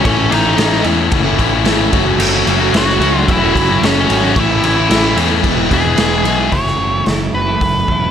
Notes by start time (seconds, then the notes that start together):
0.04 A1 A2 E3 A3 C#4 E4 A4 C#5, kick, ride
0.08 C#4
0.17 A3 C#4 E4
0.30 A1 E3 A3 C#4 D#4 E4 D#5, ride
0.44 A3 C#4 E4 A4
0.57 A1 A2 E3 A3 C#4 E4 A4, snare, ride
0.72 C#4 E4 A4, snare
0.84 E2 E3 A3 C#4 E4 A4, ride
0.99 muted overdriven electric guitar stroke
1.11 F#1, kick, ride
1.24 A3 C#4 E4 A4
1.38 A1 E3 A3 C#4 E4 A4, kick, ride
1.52 A3 C#4 E4, muted overdriven electric guitar stroke
1.64 G#1 A2 E3 A3 C#4 E4 A4, snare, ride
1.92 F#1 F#3 A3 C#4 F#4 A4, kick, ride
2.06 A3 C#4 F#4
2.18 F#1 F#3 A3 C#4 F#4, crash
2.23 A4
2.33 A3 C#4 F#4
2.47 F#1 F#3 A3 C#4 F#4, ride
2.60 A3 C#4 F#4 A4
2.73 F#1 F#3 A3 C#4 F#4 A4 F#5, snare, ride
2.77 F#4
2.88 C#4 F#4 A4, snare
3.00 C#2 F#3 A3 C#4 F#4, ride
3.05 A4
3.17 E5, muted overdriven electric guitar stroke
3.28 E1 E5, kick, ride
3.32 E4
3.41 A3 C#4 F#4 A4
3.55 F#1 F#3 A3 C#4 F#4 A4, kick, ride
3.69 A3 C#4 F#4, muted overdriven electric guitar stroke
3.81 F#1 F#3 A3 C#4 F#4 C#5, snare, ride
3.86 C#4 A4
4.09 G#1 F#3 A3 C#4 F#4 A4, ride
4.23 A3 C#4 F#4
4.36 A1 A2 E3 A3 C#4 E4 A4 E5, kick, ride
4.50 A3 C#4 E4
4.63 A1 E3 A3 C#4 E4 E5, ride
4.76 A3 C#4 E4 A4
4.89 A1 A2 E3 A3 C#4 E4 A4, snare, ride
5.03 C#4 E4 A4
5.16 E2 E3 A3 C#4 E4 A4, ride
5.31 muted overdriven electric guitar stroke
5.43 E1 E3 G#3 B3 E4 G#4, kick, ride
5.56 G#3 B3 E4 G#4
5.70 E1 E3 G#3 B3 E4 G#4, kick, ride
5.83 G#3 B3 E4, muted overdriven electric guitar stroke
5.97 E1 E3 G#3 B3 E4 G#4, snare, ride
6.24 B1 E3 G#3 B3 E4 G#4, ride
6.39 G#3 B3 E4
6.52 F#1 F#2 C#3 E3 F#3 A3 C#4 E4 F#4 C#5, kick, open hi-hat
6.67 snare
6.79 F#1 C#3 E3 A3 E4
7.06 F#1 F#2 C#3 E3 A3, snare, open hi-hat
7.10 E4
7.20 E3 A3 E4
7.34 F#1 B4, muted clean electric guitar stroke
7.47 E3 A3 E4
7.61 F#1, kick, open hi-hat
7.88 E1 C#3 E3 A3, kick
7.92 E4
8.02 E3 A3 E4